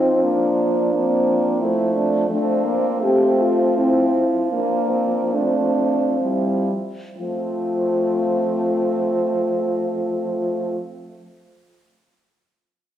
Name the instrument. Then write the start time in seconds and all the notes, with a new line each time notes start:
french horn
Already playing: F3 C4 D#4
0.23 A#3 D4
0.95 A#3 C4
1.60 E4
1.64 A3
1.93 D4
2.30 F3 A3 C4 D4
2.65 A#3
3.00 A3 C4 G4
3.41 F4
3.77 C4 E4
4.50 A#3 D4
4.90 C4
5.32 A3 C4 D4
6.21 G3 E4
7.17 F3 A3 C4 F4